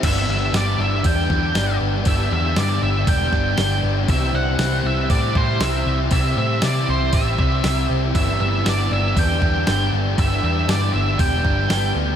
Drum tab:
CC |x-------|--------|--------|--------|
HH |o-o-o-o-|o-o-o-o-|o-o-o-o-|o-o-o-o-|
SD |--o--oo-|--o--oo-|--o---o-|--o---o-|
BD |o---oo--|o---oo--|o---oo--|o---oo--|

CC |--------|--------|
HH |o-o-o-o-|o-o-o-o-|
SD |--o---o-|--o---o-|
BD |o---oo--|o---oo--|